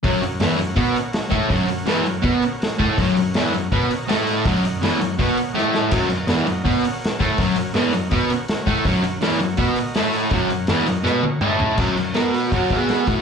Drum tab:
CC |----------------|----------------|----------------|----------------|
HH |o-o-o-o-o-o-o-o-|o-o-o-o-o-o-o-o-|o-o-o-o-o-o-o-o-|o-o-o-o-o-o-----|
SD |----o-------o---|----o-------o-o-|----oo------o-o-|----o-------o-o-|
T1 |----------------|----------------|----------------|----------------|
T2 |----------------|----------------|----------------|----------------|
FT |----------------|----------------|----------------|----------------|
BD |o-------o-----o-|o-------o-----o-|o-------o-------|o-------o-------|

CC |x---------------|----------------|----------------|----------------|
HH |o-o-o-o-o-o-o-o-|o-o-o-o-o-o-o-o-|o-o-o-o-o-o-o-o-|o-o-o-o---------|
SD |----oo------o-o-|----o-------o-o-|----oo------o-o-|----o---o-------|
T1 |----------------|----------------|----------------|----------o-----|
T2 |----------------|----------------|----------------|------------o---|
FT |----------------|----------------|----------------|--------------o-|
BD |o-------o-----o-|o-------o-----o-|o-------o-------|o---------------|

CC |x---------------|
HH |--o-o-o-o-o-o-o-|
SD |----o-------o---|
T1 |----------------|
T2 |----------------|
FT |----------------|
BD |o-------o-o---o-|